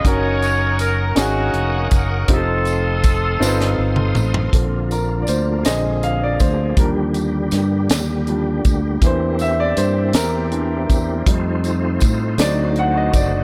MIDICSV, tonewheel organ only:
0, 0, Header, 1, 2, 480
1, 0, Start_track
1, 0, Key_signature, -2, "major"
1, 0, Tempo, 748130
1, 29, Time_signature, 6, 3, 24, 8
1, 8622, End_track
2, 0, Start_track
2, 0, Title_t, "Tonewheel organ"
2, 0, Program_c, 0, 16
2, 28, Note_on_c, 0, 78, 55
2, 30, Note_on_c, 0, 70, 61
2, 31, Note_on_c, 0, 87, 64
2, 33, Note_on_c, 0, 85, 53
2, 1454, Note_off_c, 0, 78, 0
2, 1455, Note_off_c, 0, 70, 0
2, 1457, Note_off_c, 0, 85, 0
2, 1479, Note_on_c, 0, 77, 58
2, 1481, Note_on_c, 0, 69, 64
2, 1483, Note_on_c, 0, 84, 53
2, 2885, Note_off_c, 0, 87, 0
2, 2900, Note_off_c, 0, 77, 0
2, 2901, Note_off_c, 0, 69, 0
2, 2902, Note_off_c, 0, 84, 0
2, 2902, Note_on_c, 0, 65, 47
2, 2907, Note_on_c, 0, 53, 55
2, 2910, Note_on_c, 0, 58, 44
2, 2913, Note_on_c, 0, 50, 47
2, 3613, Note_on_c, 0, 68, 56
2, 3619, Note_off_c, 0, 65, 0
2, 4334, Note_off_c, 0, 53, 0
2, 4334, Note_off_c, 0, 68, 0
2, 4350, Note_on_c, 0, 67, 54
2, 4355, Note_on_c, 0, 55, 59
2, 5766, Note_off_c, 0, 50, 0
2, 5778, Note_off_c, 0, 55, 0
2, 5789, Note_on_c, 0, 52, 61
2, 5796, Note_on_c, 0, 60, 53
2, 7203, Note_off_c, 0, 58, 0
2, 7203, Note_off_c, 0, 67, 0
2, 7214, Note_off_c, 0, 52, 0
2, 7223, Note_on_c, 0, 57, 57
2, 7224, Note_on_c, 0, 65, 55
2, 7225, Note_on_c, 0, 63, 66
2, 7232, Note_on_c, 0, 72, 64
2, 7929, Note_off_c, 0, 60, 0
2, 7938, Note_off_c, 0, 65, 0
2, 7940, Note_on_c, 0, 66, 57
2, 7944, Note_on_c, 0, 50, 55
2, 8622, Note_off_c, 0, 50, 0
2, 8622, Note_off_c, 0, 57, 0
2, 8622, Note_off_c, 0, 63, 0
2, 8622, Note_off_c, 0, 66, 0
2, 8622, Note_off_c, 0, 72, 0
2, 8622, End_track
0, 0, End_of_file